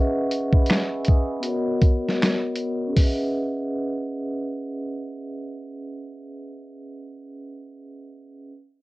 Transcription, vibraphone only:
Already playing: C#4 G#4 B4 D#5 E5 F#5 C#6
0.54 F#5 B5
0.69 G#5 C#6
0.92 B5 E6
1.07 G#5 D#6
1.30 B5
1.40 B3 F#4
1.45 A#4 C#5
1.50 D#5
2.87 C#4 G#4
2.95 B4
3.02 E5 F#5

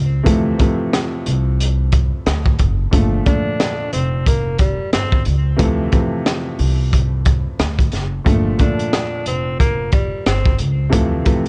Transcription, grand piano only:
0.23 C3 E3 F3 A3
0.58 C3 E3 F3 A3
2.91 A#2 D3 F3 A3
3.25 A#2 D3 F3 A3
5.56 C3 E3 F3 A3
5.91 C3 E3 F3 A3
8.24 A#2 D3 F3 A3
8.58 A#2 D3 F3 A3
10.90 C3 E3 F3 A3
11.25 C3 E3 F3 A3

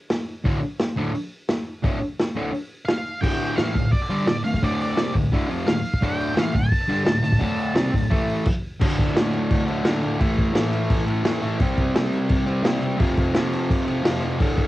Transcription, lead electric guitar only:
2.85 F5
3.21 G5
3.56 F5
3.92 D5
4.28 D5
4.44 F5
4.64 D5
4.82 D5
5.67 F5
6.04 G5
6.39 F5
6.55 A5

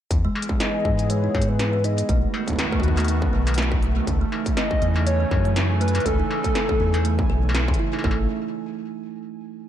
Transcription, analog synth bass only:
0.11 E2
0.85 G#2
1.35 G#2
2.09 B1
2.83 D#2
3.33 B1
4.07 C#2
4.82 E2
5.31 F#2
6.06 C#2
6.80 E2
7.30 B1
8.04 A1

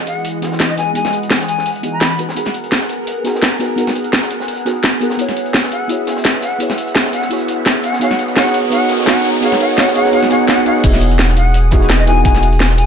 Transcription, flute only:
0.07 F#5
0.69 D#5
0.78 G#5
0.95 G#5
1.48 G#5
1.93 B5
5.72 F#5
6.42 F#5
7.13 F#5
7.84 F#5
8.01 F#5
8.37 F#5
8.72 F#5
9.07 F#5
9.43 F#5
9.60 F#5
9.78 F#5
9.96 F#5
10.13 F#5
10.31 F#5
10.48 F#5
10.66 F#5
11.37 F#5
11.99 D#5
12.07 G#5
12.25 G#5
12.78 G#5

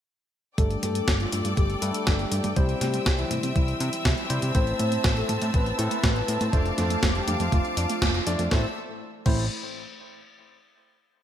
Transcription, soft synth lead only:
0.58 A4
0.83 A4
1.20 F4
1.57 G4
2.57 G4
2.82 G4
3.19 E4
3.56 E4
4.55 C5
4.80 C5
5.17 A4
5.54 B4
6.53 A4
6.78 A4
7.15 G4
7.52 F4
8.52 E4
9.26 E4

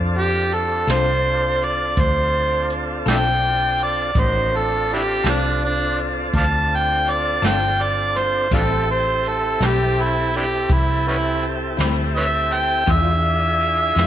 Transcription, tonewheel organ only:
Already playing: C4 D4 F4 A4
4.16 C#4 D#4 F#4 A#4
4.52 C4 D4 F4 A4
8.52 C4 E4 G4 A4
12.87 D4 E4 F4 G#4

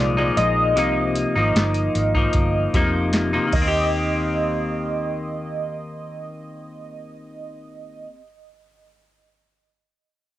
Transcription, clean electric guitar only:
Already playing: A#2 F3 G#3 D#4
0.17 A#2 F3 G#3 D#4
0.76 C3 F3 A#3 D#4
1.35 F3 A#3 D#4
2.15 F3 A#3 D#4
2.74 C3 F3 A#3 D#4
3.33 C3 F3 A#3 D#4
3.47 D#3
3.55 A#3
3.62 C4
3.68 G4

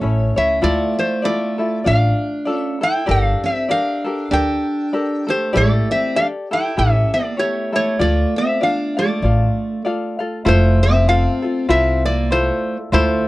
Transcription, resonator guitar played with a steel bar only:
Already playing: C#5
0.38 E5
0.64 D5
0.99 C5
1.25 D5
1.87 F5
2.54 E5
2.83 G5
3.11 F5
3.46 E5
3.71 F5
4.33 G5
5.30 C5
5.57 D5
5.91 E5
6.16 F5
6.53 G5
6.79 E5
7.14 D5
7.39 C#5
7.76 C#5
8.01 D5
8.38 E5
8.63 F5
8.99 D5
10.48 C5
10.83 E5
11.09 F5
11.70 E5
12.05 D5
12.32 C5
12.94 C5

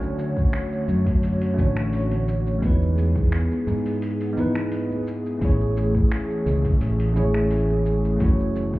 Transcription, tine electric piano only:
Already playing: A3 C#4 D4 F#4 C#5
1.54 A3 C#4 D4
1.60 F#4 C#5
2.59 G#3 B3 D#4
2.64 E4 B4
4.33 G#3 B3 D#4
4.39 E4 B4
5.38 A3 C#4 E4
5.43 G#4 C#5
7.12 A3 C#4 E4
7.18 G#4 C#5
8.17 A3 C#4 E4
8.22 F#4 C#5

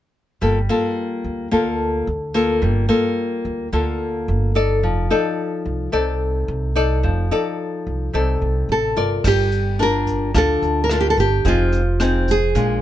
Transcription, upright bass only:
0.42 G1
1.24 D2
1.52 D2
2.07 D2
2.62 G1
3.45 D2
3.73 D2
4.28 G1
4.83 F1
5.66 C2
5.93 C2
6.48 C2
7.04 F1
7.87 C2
8.14 C2
8.42 C2
8.69 A1
8.96 G1
9.24 G1
10.35 D2
10.62 D2
11.17 G1
11.45 F1
12.55 A#1

